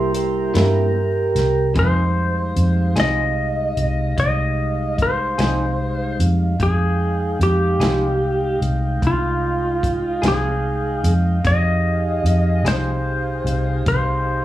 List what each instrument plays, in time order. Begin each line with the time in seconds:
Already playing: fingered electric bass C2, tonewheel organ G3 A#3 E4 G4 C5, horn section C5 E5 A#5
0.14 tonewheel organ G4 C5, closed hi-hat
0.54 fingered electric bass G2, clean electric guitar C3 G3 A#3 E4, tonewheel organ G3 A#3 A#4, snare, closed hi-hat
0.58 tonewheel organ E4 G4
1.35 fingered electric bass C2, snare, closed hi-hat
1.74 fingered electric bass F2, clean electric guitar F3 C4 D#4 G#4, tonewheel organ G3 G#3 D#4, horn section D#5 F5, kick, closed hi-hat
1.79 electric slide guitar C5
2.56 fingered electric bass F2, closed hi-hat
2.96 fingered electric bass C2, clean electric guitar F3 C4 D#4 G#4, electric slide guitar D#5, snare, closed hi-hat
3.77 fingered electric bass C2, closed hi-hat
4.17 fingered electric bass C2, electric slide guitar D#5, kick, closed hi-hat
4.98 kick, closed hi-hat
5.02 electric slide guitar C5
5.38 fingered electric bass C2, clean electric guitar F3 C4 D#4 G#4, snare, closed hi-hat
6.19 fingered electric bass F2, closed hi-hat
6.59 fingered electric bass F2, tonewheel organ G#3 D#4 G5, electric slide guitar G#4, kick, closed hi-hat
7.40 fingered electric bass F2, electric slide guitar G4, closed hi-hat
7.79 fingered electric bass C2, clean electric guitar F3 C4 D#4 G#4, snare, closed hi-hat
8.61 fingered electric bass C2, closed hi-hat
9.02 fingered electric bass C2, kick, closed hi-hat
9.07 electric slide guitar F4
9.83 kick, closed hi-hat
10.22 fingered electric bass C2, clean electric guitar F3 C4 D#4 G#4, snare, closed hi-hat
10.28 electric slide guitar G#4
11.04 fingered electric bass F2, closed hi-hat
11.44 fingered electric bass F2, tonewheel organ D#4 G4 G#4, electric slide guitar D#5, kick, closed hi-hat
12.24 fingered electric bass F2, closed hi-hat
12.63 fingered electric bass C2, clean electric guitar F3 C4 D#4 G#4, closed hi-hat
12.68 electric slide guitar C5, snare
13.45 fingered electric bass C2, closed hi-hat
13.86 fingered electric bass C2, electric slide guitar C5, kick, closed hi-hat